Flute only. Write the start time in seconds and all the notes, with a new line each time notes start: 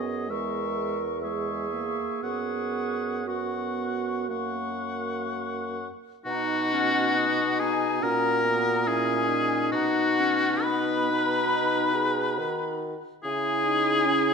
0.30 C#6
1.22 C#6
2.23 C#6
3.26 C#6
4.29 C#6
6.25 F#5
7.60 G#5
8.03 A#5
8.87 G#5
9.73 F#5
10.65 B5
13.24 G#5